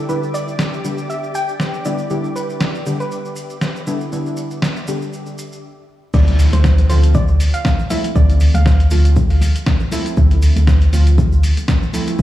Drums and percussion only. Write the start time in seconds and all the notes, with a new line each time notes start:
0.09 maracas
0.23 maracas
0.34 maracas
0.48 maracas
0.59 snare, maracas
0.74 maracas
0.85 maracas
0.98 maracas
1.10 maracas
1.24 maracas
1.35 maracas
1.49 maracas
1.60 snare, maracas
1.74 maracas
1.85 maracas
1.98 maracas
2.10 maracas
2.24 maracas
2.36 maracas
2.50 maracas
2.61 snare, maracas
2.75 maracas
2.86 maracas
3.00 maracas
3.11 maracas
3.25 maracas
3.36 maracas
3.50 maracas
3.61 snare, maracas
3.76 maracas
3.87 maracas
4.01 maracas
4.12 maracas
4.26 maracas
4.37 maracas
4.51 maracas
4.62 snare, maracas
4.76 maracas
4.88 maracas
5.02 maracas
5.13 maracas
5.26 maracas
5.38 maracas
5.53 maracas
6.14 kick, crash, maracas
6.27 closed hi-hat, muted conga, maracas
6.39 open hi-hat, maracas
6.53 closed hi-hat, high conga, maracas
6.64 kick, snare, maracas
6.78 closed hi-hat, muted conga, maracas
6.90 open hi-hat, maracas
7.03 closed hi-hat, maracas
7.14 kick, muted conga, low conga, maracas
7.28 high conga, maracas
7.40 open hi-hat, maracas
7.54 closed hi-hat, maracas
7.65 kick, snare, muted conga, maracas
7.79 maracas
7.90 open hi-hat, high conga, maracas
8.04 closed hi-hat, muted conga, maracas
8.16 kick, maracas
8.30 closed hi-hat, maracas
8.40 open hi-hat, maracas
8.54 closed hi-hat, muted conga, high conga, maracas
8.66 kick, snare, maracas
8.80 closed hi-hat, maracas
8.91 open hi-hat, muted conga, maracas
9.05 closed hi-hat, maracas
9.16 kick, low conga, maracas
9.30 open hi-hat, high conga, maracas
9.41 open hi-hat, muted conga, maracas
9.56 closed hi-hat, maracas
9.66 kick, snare, maracas
9.80 muted conga, maracas
9.92 open hi-hat, high conga, maracas
10.06 closed hi-hat, maracas
10.17 kick, maracas
10.31 closed hi-hat, muted conga, maracas
10.42 open hi-hat, maracas
10.56 closed hi-hat, high conga, maracas
10.67 kick, snare, muted conga, maracas
10.81 closed hi-hat, maracas
10.93 open hi-hat, maracas
11.07 closed hi-hat, maracas
11.18 kick, muted conga, low conga, maracas
11.32 high conga, maracas
11.43 open hi-hat, maracas
11.57 closed hi-hat, muted conga, maracas
11.68 kick, snare, maracas
11.83 maracas
11.93 open hi-hat, high conga, maracas
12.07 closed hi-hat, muted conga, maracas
12.19 kick, maracas